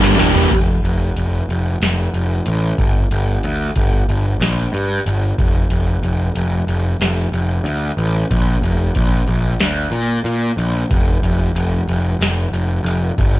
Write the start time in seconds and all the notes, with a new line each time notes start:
Already playing: G1 G3
0.01 A#3 D4 G4, snare
0.17 E1 G3 A#3 D4 G4, snare
0.34 A#3 D4 G4, floor tom
0.51 F1, kick, closed hi-hat, crash
0.83 F1, closed hi-hat
1.16 F1, closed hi-hat
1.49 F1, closed hi-hat
1.80 F1, snare, closed hi-hat
2.14 F1, closed hi-hat
2.46 A1, closed hi-hat
2.78 G1, kick, closed hi-hat
3.11 G1, closed hi-hat
3.43 D2, closed hi-hat
3.76 G1, kick, closed hi-hat
4.08 G1, closed hi-hat
4.40 A#1, snare, closed hi-hat
4.73 G2, closed hi-hat
5.06 G1, closed hi-hat
5.38 F1, kick, closed hi-hat
5.70 F1, closed hi-hat
6.03 F1, closed hi-hat
6.35 F1, closed hi-hat
6.67 F1, closed hi-hat
7.00 F1, snare, closed hi-hat
7.32 F1, closed hi-hat
7.64 D2, closed hi-hat
7.97 A1, closed hi-hat
8.31 A#1, kick, closed hi-hat
8.62 F1, closed hi-hat
8.95 A#1, kick, closed hi-hat
9.27 A#1, closed hi-hat
9.60 D2, snare, closed hi-hat
9.91 A#2, closed hi-hat
10.24 A#2, closed hi-hat
10.57 A#1, closed hi-hat
10.91 F1, kick, closed hi-hat
11.22 F1, closed hi-hat
11.54 F1, closed hi-hat
11.88 F1, closed hi-hat
12.19 F1, snare, closed hi-hat
12.52 F1, closed hi-hat
12.83 F1, closed hi-hat
13.18 G1, kick, closed hi-hat